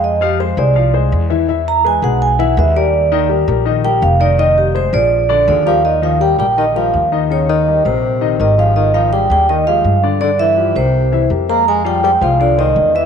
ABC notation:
X:1
M:4/4
L:1/8
Q:1/4=165
K:Eb
V:1 name="Vibraphone"
e G c d2 z3 | z b ^g _g ^g _g =e d- | d2 z3 g f d | e G c d3 d f |
e f g g e f2 z | _d e2 c3 e f | e f g g e f2 z | d _f2 c3 z b |
a g g f d e2 _f |]
V:2 name="Upright piano"
[A,Ac] [F,Ff] [A,Ac] [A,Ac] [F,Ff] [A,Ac]2 [_F,_F_f] | [=E,=E=e]2 [^G,^G=B] [G,GB]2 [E,Ee] [G,GB] [=G,=G_B]- | [G,GB] [E,Ee] [G,GB] [G,GB] [E,Ee] [G,GB]2 [E,Ee] | [E,Ee]2 [A,Ac] [F,FA]2 [D,Dd] [F,FA] [G,GB] |
z [E,Ee] [G,GB] [G,GB] [E,Ee] [G,GB]2 [E,Ee] | [E,Ee]2 [G,GB] [G,GB]2 [E,Ee] [G,GB] [F,GA]- | [F,GA] [E,Ee] [G,GA] [G,GA] [E,Ee] [A,GA]2 [D,Dd] | [D,Dd]2 [F,FG] [G,GB]2 [=E,=E=e] [G,GB] [A,Ac]- |
[A,Ac] [F,Ff] [A,Ac] [A,Ac] [F,Ff] [A,Ac]2 [_F,_F_f] |]
V:3 name="Tenor saxophone" clef=bass
z8 | z8 | z8 | z6 D, F, |
E, F, G, G, E, F,2 z | _D, E,2 C,3 E, F, | E, F, G, G, E, F,2 z | D, _F,2 C,3 z B, |
A, G, G, F, D, E,2 _F, |]
V:4 name="Upright bass" clef=bass
F,,3 C,,3 _F,,2- | _F,,3 =B,,,3 E,,2- | E,,3 B,,,3 F,,,2- | F,,,3 B,,,3 E,,2- |
E,,3 B,,,3 E,,2- | E,,3 B,,,3 A,,,2- | A,,,3 E,,3 G,,2- | G,,3 C,,3 F,,2- |
F,,3 C,,3 _F,,2 |]